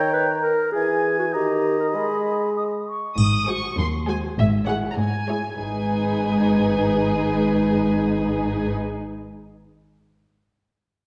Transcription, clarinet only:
0, 0, Header, 1, 2, 480
1, 0, Start_track
1, 0, Key_signature, 5, "minor"
1, 0, Tempo, 601805
1, 594, Time_signature, 2, 2, 24, 8
1, 8821, End_track
2, 0, Start_track
2, 0, Title_t, "Clarinet"
2, 0, Program_c, 0, 71
2, 0, Note_on_c, 0, 73, 73
2, 102, Note_off_c, 0, 73, 0
2, 107, Note_on_c, 0, 71, 68
2, 217, Note_off_c, 0, 71, 0
2, 339, Note_on_c, 0, 70, 79
2, 570, Note_off_c, 0, 70, 0
2, 575, Note_on_c, 0, 68, 64
2, 936, Note_off_c, 0, 68, 0
2, 950, Note_on_c, 0, 66, 57
2, 1005, Note_off_c, 0, 66, 0
2, 1070, Note_on_c, 0, 67, 56
2, 1428, Note_off_c, 0, 67, 0
2, 1438, Note_on_c, 0, 70, 54
2, 1493, Note_off_c, 0, 70, 0
2, 1559, Note_on_c, 0, 68, 49
2, 2038, Note_off_c, 0, 68, 0
2, 8821, End_track
0, 0, End_of_file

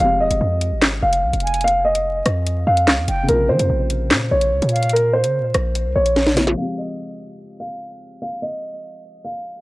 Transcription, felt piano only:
0, 0, Header, 1, 2, 480
1, 0, Start_track
1, 0, Time_signature, 4, 2, 24, 8
1, 0, Key_signature, -4, "minor"
1, 0, Tempo, 410959
1, 11226, End_track
2, 0, Start_track
2, 0, Title_t, "Felt piano"
2, 0, Program_c, 0, 0
2, 0, Control_c, 0, 64, 127
2, 0, Note_on_c, 0, 53, 69
2, 0, Note_on_c, 0, 56, 65
2, 11, Control_c, 0, 64, 0
2, 18, Note_on_c, 0, 60, 65
2, 56, Note_on_c, 0, 67, 76
2, 240, Control_c, 0, 64, 127
2, 3763, Note_off_c, 0, 53, 0
2, 3774, Note_on_c, 0, 49, 73
2, 3782, Note_off_c, 0, 56, 0
2, 3801, Note_off_c, 0, 60, 0
2, 3812, Note_on_c, 0, 58, 61
2, 3820, Note_off_c, 0, 67, 0
2, 3850, Note_on_c, 0, 48, 63
2, 3852, Control_c, 0, 64, 0
2, 3888, Note_on_c, 0, 65, 74
2, 4020, Control_c, 0, 64, 127
2, 7359, Note_off_c, 0, 49, 0
2, 7378, Note_off_c, 0, 58, 0
2, 7397, Note_off_c, 0, 48, 0
2, 7406, Note_on_c, 0, 49, 49
2, 7416, Note_off_c, 0, 65, 0
2, 7425, Note_on_c, 0, 58, 48
2, 7445, Note_on_c, 0, 60, 51
2, 7463, Note_on_c, 0, 65, 57
2, 7619, Note_on_c, 0, 53, 63
2, 7657, Note_on_c, 0, 56, 59
2, 7662, Note_off_c, 0, 49, 0
2, 7671, Note_off_c, 0, 58, 0
2, 7677, Note_off_c, 0, 60, 0
2, 7690, Note_off_c, 0, 65, 0
2, 7695, Control_c, 0, 64, 0
2, 7695, Note_on_c, 0, 60, 56
2, 7733, Note_on_c, 0, 67, 74
2, 7880, Control_c, 0, 64, 127
2, 11226, Note_off_c, 0, 53, 0
2, 11226, Note_off_c, 0, 56, 0
2, 11226, Note_off_c, 0, 60, 0
2, 11226, Note_off_c, 0, 67, 0
2, 11226, End_track
0, 0, End_of_file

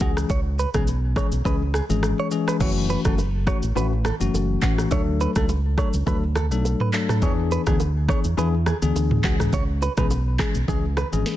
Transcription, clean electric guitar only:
0, 0, Header, 1, 2, 480
1, 0, Start_track
1, 0, Key_signature, 3, "minor"
1, 0, Tempo, 576923
1, 249, Time_signature, 4, 2, 24, 8
1, 9457, End_track
2, 0, Start_track
2, 0, Title_t, "Clean electric guitar"
2, 0, Program_c, 0, 27
2, 13, Note_on_c, 0, 66, 72
2, 88, Note_off_c, 0, 66, 0
2, 253, Note_on_c, 0, 73, 81
2, 328, Note_off_c, 0, 73, 0
2, 494, Note_on_c, 0, 71, 75
2, 569, Note_off_c, 0, 71, 0
2, 627, Note_on_c, 0, 68, 72
2, 688, Note_off_c, 0, 68, 0
2, 976, Note_on_c, 0, 73, 75
2, 1050, Note_off_c, 0, 73, 0
2, 1214, Note_on_c, 0, 71, 88
2, 1289, Note_off_c, 0, 71, 0
2, 1455, Note_on_c, 0, 68, 73
2, 1530, Note_off_c, 0, 68, 0
2, 1827, Note_on_c, 0, 73, 71
2, 1888, Note_off_c, 0, 73, 0
2, 2067, Note_on_c, 0, 71, 74
2, 2128, Note_off_c, 0, 71, 0
2, 2174, Note_on_c, 0, 73, 72
2, 2249, Note_off_c, 0, 73, 0
2, 2413, Note_on_c, 0, 71, 75
2, 2489, Note_off_c, 0, 71, 0
2, 2546, Note_on_c, 0, 69, 77
2, 2607, Note_off_c, 0, 69, 0
2, 2894, Note_on_c, 0, 73, 78
2, 2969, Note_off_c, 0, 73, 0
2, 3134, Note_on_c, 0, 71, 80
2, 3209, Note_off_c, 0, 71, 0
2, 3375, Note_on_c, 0, 69, 79
2, 3450, Note_off_c, 0, 69, 0
2, 3854, Note_on_c, 0, 66, 74
2, 3929, Note_off_c, 0, 66, 0
2, 4095, Note_on_c, 0, 73, 83
2, 4170, Note_off_c, 0, 73, 0
2, 4334, Note_on_c, 0, 71, 73
2, 4409, Note_off_c, 0, 71, 0
2, 4465, Note_on_c, 0, 69, 75
2, 4527, Note_off_c, 0, 69, 0
2, 4814, Note_on_c, 0, 73, 77
2, 4889, Note_off_c, 0, 73, 0
2, 5055, Note_on_c, 0, 71, 89
2, 5130, Note_off_c, 0, 71, 0
2, 5295, Note_on_c, 0, 69, 79
2, 5370, Note_off_c, 0, 69, 0
2, 5667, Note_on_c, 0, 71, 72
2, 5728, Note_off_c, 0, 71, 0
2, 5908, Note_on_c, 0, 69, 80
2, 5969, Note_off_c, 0, 69, 0
2, 6016, Note_on_c, 0, 73, 78
2, 6091, Note_off_c, 0, 73, 0
2, 6256, Note_on_c, 0, 71, 78
2, 6331, Note_off_c, 0, 71, 0
2, 6388, Note_on_c, 0, 68, 78
2, 6449, Note_off_c, 0, 68, 0
2, 6737, Note_on_c, 0, 73, 80
2, 6811, Note_off_c, 0, 73, 0
2, 6976, Note_on_c, 0, 71, 83
2, 7051, Note_off_c, 0, 71, 0
2, 7217, Note_on_c, 0, 68, 76
2, 7291, Note_off_c, 0, 68, 0
2, 7697, Note_on_c, 0, 66, 81
2, 7771, Note_off_c, 0, 66, 0
2, 7936, Note_on_c, 0, 73, 81
2, 8010, Note_off_c, 0, 73, 0
2, 8175, Note_on_c, 0, 71, 76
2, 8250, Note_off_c, 0, 71, 0
2, 8308, Note_on_c, 0, 71, 79
2, 8368, Note_off_c, 0, 71, 0
2, 8654, Note_on_c, 0, 68, 77
2, 8729, Note_off_c, 0, 68, 0
2, 8894, Note_on_c, 0, 68, 92
2, 8969, Note_off_c, 0, 68, 0
2, 9134, Note_on_c, 0, 71, 80
2, 9209, Note_off_c, 0, 71, 0
2, 9457, End_track
0, 0, End_of_file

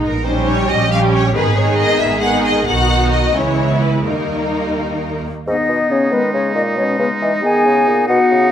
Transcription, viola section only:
0, 0, Header, 1, 2, 480
1, 0, Start_track
1, 0, Key_signature, 5, "minor"
1, 0, Tempo, 436999
1, 62, Time_signature, 6, 3, 24, 8
1, 2942, Tempo, 465477
1, 5822, Tempo, 434153
1, 9189, End_track
2, 0, Start_track
2, 0, Title_t, "Viola section"
2, 0, Program_c, 0, 48
2, 287, Note_on_c, 0, 55, 51
2, 288, Note_on_c, 0, 61, 50
2, 994, Note_off_c, 0, 55, 0
2, 994, Note_off_c, 0, 61, 0
2, 1007, Note_on_c, 0, 55, 50
2, 1008, Note_on_c, 0, 61, 54
2, 1482, Note_off_c, 0, 55, 0
2, 1482, Note_off_c, 0, 61, 0
2, 1482, Note_on_c, 0, 59, 44
2, 1487, Note_on_c, 0, 51, 39
2, 1718, Note_off_c, 0, 59, 0
2, 1720, Note_off_c, 0, 51, 0
2, 1731, Note_on_c, 0, 59, 49
2, 1734, Note_on_c, 0, 51, 53
2, 2441, Note_off_c, 0, 59, 0
2, 2442, Note_off_c, 0, 51, 0
2, 2453, Note_on_c, 0, 59, 49
2, 2456, Note_on_c, 0, 51, 51
2, 2924, Note_off_c, 0, 59, 0
2, 2929, Note_off_c, 0, 51, 0
2, 2937, Note_on_c, 0, 59, 46
2, 2942, Note_on_c, 0, 51, 45
2, 3601, Note_off_c, 0, 59, 0
2, 3603, Note_off_c, 0, 51, 0
2, 3648, Note_on_c, 0, 52, 51
2, 3651, Note_on_c, 0, 56, 51
2, 4363, Note_off_c, 0, 56, 0
2, 4375, Note_on_c, 0, 51, 38
2, 4376, Note_off_c, 0, 52, 0
2, 4380, Note_on_c, 0, 55, 40
2, 5608, Note_off_c, 0, 51, 0
2, 5610, Note_off_c, 0, 55, 0
2, 9189, End_track
0, 0, End_of_file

